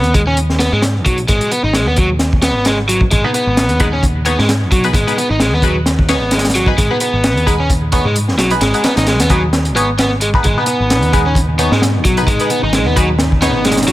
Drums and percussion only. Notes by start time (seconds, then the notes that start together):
0.04 closed hi-hat
0.14 kick, closed hi-hat
0.37 closed hi-hat
0.50 snare
0.59 snare, closed hi-hat
0.82 snare, closed hi-hat
1.06 kick, closed hi-hat
1.18 closed hi-hat
1.28 kick, closed hi-hat
1.41 closed hi-hat
1.52 closed hi-hat
1.73 snare, closed hi-hat
1.96 kick, closed hi-hat
2.19 snare, closed hi-hat
2.33 kick
2.42 snare, closed hi-hat
2.65 snare, closed hi-hat
2.89 closed hi-hat
3.01 kick
3.11 kick, closed hi-hat
3.34 closed hi-hat
3.57 snare, closed hi-hat
3.69 closed hi-hat
3.80 kick, closed hi-hat
4.03 kick, closed hi-hat
4.25 closed hi-hat
4.39 snare
4.49 snare, closed hi-hat
4.72 kick, closed hi-hat
4.84 closed hi-hat
4.93 kick, closed hi-hat
5.08 closed hi-hat
5.18 closed hi-hat
5.40 snare, closed hi-hat
5.62 kick, closed hi-hat
5.86 snare, closed hi-hat
5.99 kick
6.09 snare, closed hi-hat
6.31 snare, closed hi-hat
6.38 snare, closed hi-hat
6.45 snare, closed hi-hat
6.50 snare, closed hi-hat
6.55 closed hi-hat
6.66 kick
6.78 kick, closed hi-hat
7.00 closed hi-hat
7.24 snare, closed hi-hat
7.37 closed hi-hat
7.47 kick, closed hi-hat
7.70 kick, closed hi-hat
7.92 kick, closed hi-hat
8.16 closed hi-hat
8.28 snare
8.38 snare, closed hi-hat
8.50 closed hi-hat
8.61 snare, closed hi-hat
8.74 closed hi-hat
8.84 snare, closed hi-hat
8.97 snare, closed hi-hat
9.07 snare, closed hi-hat
9.20 snare, closed hi-hat
9.30 kick, closed hi-hat
9.53 snare, closed hi-hat
9.65 closed hi-hat
9.77 closed hi-hat
9.98 snare, closed hi-hat
10.21 closed hi-hat
10.34 kick
10.44 kick, closed hi-hat
10.66 closed hi-hat
10.90 snare, closed hi-hat
11.03 closed hi-hat
11.13 kick, closed hi-hat
11.35 kick, closed hi-hat
11.59 closed hi-hat
11.72 snare
11.82 snare, closed hi-hat
12.05 kick, closed hi-hat
12.17 closed hi-hat
12.27 kick, closed hi-hat
12.40 closed hi-hat
12.50 closed hi-hat
12.73 snare, closed hi-hat
12.97 kick, closed hi-hat
13.19 snare, closed hi-hat
13.32 kick
13.42 snare, closed hi-hat
13.65 snare, closed hi-hat
13.71 snare, closed hi-hat
13.77 snare, closed hi-hat
13.83 snare, closed hi-hat
13.87 closed hi-hat